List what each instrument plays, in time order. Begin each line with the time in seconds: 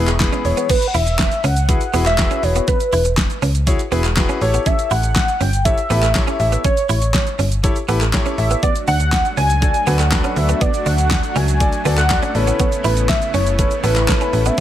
Already playing: fm bass E1, supersaw synth B2 E3 G#3 E4, soft synth lead E5
0.08 clean electric guitar G#3, clap, closed hi-hat, shaker
0.20 grand piano B3 E4 G#4 B4, kick, snare, clap, closed hi-hat, shaker
0.32 clean electric guitar C#4, closed hi-hat, shaker
0.45 fm bass E1, soft synth lead C#5, muted clean electric guitar stroke, open hi-hat, shaker
0.57 clean electric guitar B3, closed hi-hat, shaker
0.70 clean electric guitar B3, soft synth lead B4, kick, closed hi-hat, crash, shaker
0.82 closed hi-hat, shaker
0.88 soft synth lead F#5
0.94 fm bass E1, clean electric guitar E4, soft synth lead E5, open hi-hat, shaker
1.07 muted clean electric guitar stroke, closed hi-hat, shaker
1.19 kick, snare, clap, closed hi-hat, shaker
1.32 closed hi-hat, shaker
1.44 fm bass C#2, clean electric guitar C#4, soft synth lead F#5, open hi-hat, shaker
1.56 closed hi-hat, shaker
1.68 grand piano E4 F#4 G#4 B4, muted clean electric guitar stroke, kick, closed hi-hat, shaker
1.81 closed hi-hat, shaker
1.93 fm bass E1, clean electric guitar B3, grand piano E4 F#4 G#4 B4, open hi-hat, shaker
2.06 clean electric guitar G#3, soft synth lead E5, clap, closed hi-hat, shaker
2.18 grand piano E4 F#4 G#4 B4, kick, snare, clap, closed hi-hat, shaker
2.31 clean electric guitar C#4, closed hi-hat, shaker
2.43 fm bass E1, soft synth lead C#5, muted clean electric guitar stroke, open hi-hat, shaker
2.56 clean electric guitar B3, closed hi-hat, shaker
2.68 clean electric guitar B3, soft synth lead B4, kick, closed hi-hat, shaker
2.80 closed hi-hat, shaker
2.92 fm bass E1, clean electric guitar E4, open hi-hat, shaker
3.05 muted clean electric guitar stroke, closed hi-hat, shaker
3.17 kick, snare, clap, closed hi-hat, shaker
3.30 closed hi-hat, shaker
3.42 fm bass C#2, clean electric guitar C#4, open hi-hat, shaker
3.55 closed hi-hat, shaker
3.67 grand piano E4 F#4 G#4 C#5, muted clean electric guitar stroke, kick, closed hi-hat, shaker
3.79 closed hi-hat, shaker
3.91 fm bass E1, clean electric guitar B3, grand piano E4 F#4 G#4 B4, open hi-hat, shaker
4.04 clean electric guitar G#3, clap, closed hi-hat, shaker
4.16 grand piano E4 F#4 G#4 B4, kick, snare, clap, closed hi-hat, shaker
4.29 clean electric guitar C#4, closed hi-hat, shaker
4.41 fm bass A1, grand piano E4 G4 A4 C#5, soft synth lead C#5, muted clean electric guitar stroke, open hi-hat, shaker
4.54 clean electric guitar B3, closed hi-hat, shaker
4.66 clean electric guitar C#4, soft synth lead E5, kick, closed hi-hat, shaker
4.79 closed hi-hat, shaker
4.91 fm bass A1, clean electric guitar E4, soft synth lead F#5, open hi-hat, shaker
5.03 muted clean electric guitar stroke, closed hi-hat, shaker
5.16 kick, snare, clap, closed hi-hat, shaker
5.28 closed hi-hat, shaker
5.40 fm bass G1, clean electric guitar C#4, soft synth lead G5, open hi-hat, shaker
5.53 closed hi-hat, shaker
5.65 grand piano E4 G4 A4 C#5, soft synth lead E5, muted clean electric guitar stroke, kick, closed hi-hat, shaker
5.78 closed hi-hat, shaker
5.90 fm bass A1, clean electric guitar B3, grand piano E4 G4 A4 B4, open hi-hat, shaker
6.03 clean electric guitar A3, clap, closed hi-hat, shaker
6.15 grand piano E4 G4 A4 C#5, kick, snare, clap, closed hi-hat, shaker
6.27 clean electric guitar C#4, closed hi-hat, shaker
6.39 fm bass A1, soft synth lead E5, muted clean electric guitar stroke, open hi-hat, shaker
6.52 clean electric guitar B3, closed hi-hat, shaker
6.64 clean electric guitar C#4, soft synth lead C#5, kick, closed hi-hat, shaker
6.77 closed hi-hat, shaker
6.89 fm bass A1, clean electric guitar E4, soft synth lead C#5, open hi-hat, shaker
7.02 muted clean electric guitar stroke, closed hi-hat, shaker
7.14 kick, snare, clap, closed hi-hat, shaker
7.27 closed hi-hat, shaker
7.39 fm bass G1, clean electric guitar C#4, open hi-hat, shaker
7.52 closed hi-hat, shaker
7.63 grand piano E4 G4 A4 C#5, muted clean electric guitar stroke, kick, closed hi-hat, shaker
7.76 closed hi-hat, shaker
7.88 fm bass A1, clean electric guitar B3, grand piano E4 G4 A4 B4, open hi-hat, shaker
8.01 clean electric guitar A3, clap, closed hi-hat, shaker
8.13 grand piano E4 G4 A4 C#5, kick, snare, clap, closed hi-hat, shaker
8.26 clean electric guitar C#4, closed hi-hat, shaker
8.38 fm bass A1, soft synth lead E5, muted clean electric guitar stroke, open hi-hat, shaker
8.51 clean electric guitar B3, closed hi-hat, shaker
8.63 supersaw synth F#3 A3 D4 F#4, clean electric guitar B3, soft synth lead D5, kick, closed hi-hat, shaker
8.76 closed hi-hat, shaker
8.88 fm bass D2, clean electric guitar D4, soft synth lead F#5, open hi-hat, shaker
9.00 muted clean electric guitar stroke, closed hi-hat, shaker
9.12 kick, snare, clap, closed hi-hat, shaker
9.25 closed hi-hat, shaker
9.37 fm bass C#2, clean electric guitar C#4, soft synth lead G#5, open hi-hat, shaker
9.50 closed hi-hat, shaker
9.62 grand piano D4 F#4 A4 D5, muted clean electric guitar stroke, kick, closed hi-hat, shaker
9.74 closed hi-hat, shaker
9.87 fm bass D2, clean electric guitar B3, grand piano D4 F#4 A4 B4, open hi-hat, shaker
9.99 clean electric guitar A3, soft synth lead F#5, clap, closed hi-hat, shaker
10.11 grand piano D4 F#4 A4 B4, kick, snare, clap, closed hi-hat, shaker
10.24 clean electric guitar C#4, closed hi-hat, shaker
10.36 fm bass D2, soft synth lead E5, muted clean electric guitar stroke, open hi-hat, shaker
10.49 clean electric guitar B3, closed hi-hat, shaker
10.61 clean electric guitar B3, soft synth lead D5, kick, closed hi-hat, shaker
10.74 closed hi-hat, shaker
10.86 fm bass D2, clean electric guitar D4, soft synth lead F#5, open hi-hat, shaker
10.98 muted clean electric guitar stroke, closed hi-hat, shaker
11.11 kick, snare, clap, closed hi-hat, shaker
11.23 closed hi-hat, shaker
11.35 fm bass C#2, clean electric guitar C#4, soft synth lead G#5, open hi-hat, shaker
11.48 closed hi-hat, shaker
11.60 grand piano D4 F#4 A4 D5, muted clean electric guitar stroke, kick, closed hi-hat, shaker
11.73 closed hi-hat, shaker
11.85 fm bass D2, clean electric guitar B3, grand piano D4 F#4 A4 D5, open hi-hat, shaker
11.98 clean electric guitar A3, soft synth lead F#5, clap, closed hi-hat, shaker
12.10 grand piano D4 F#4 A4 D5, kick, snare, clap, closed hi-hat, shaker
12.22 clean electric guitar C#4, closed hi-hat, shaker
12.35 fm bass A1, supersaw synth C#3 B3 E4, grand piano C#4 E4 A4 B4, soft synth lead C#5, muted clean electric guitar stroke, open hi-hat, shaker
12.47 clean electric guitar B3, closed hi-hat, shaker
12.60 clean electric guitar B3, kick, closed hi-hat, shaker
12.72 closed hi-hat, shaker
12.84 fm bass A1, clean electric guitar E4, soft synth lead B4, open hi-hat, shaker
12.97 muted clean electric guitar stroke, closed hi-hat, shaker
13.09 soft synth lead E5, kick, snare, clap, closed hi-hat, shaker
13.22 closed hi-hat, shaker
13.34 fm bass F#1, clean electric guitar C#4, soft synth lead C#5, open hi-hat, shaker
13.47 closed hi-hat, shaker
13.59 grand piano C#4 E4 A4 B4, soft synth lead C#5, muted clean electric guitar stroke, kick, closed hi-hat, shaker
13.71 closed hi-hat, shaker
13.83 fm bass A1, clean electric guitar B3, grand piano C#4 E4 A4 B4, soft synth lead B4, open hi-hat, shaker
13.96 clean electric guitar A3, clap, closed hi-hat, shaker
14.08 grand piano C#4 E4 A4 B4, soft synth lead B4, kick, snare, clap, closed hi-hat, shaker
14.21 clean electric guitar C#4, closed hi-hat, shaker
14.33 fm bass A1, muted clean electric guitar stroke, open hi-hat, shaker
14.46 clean electric guitar B3, soft synth lead E5, closed hi-hat, shaker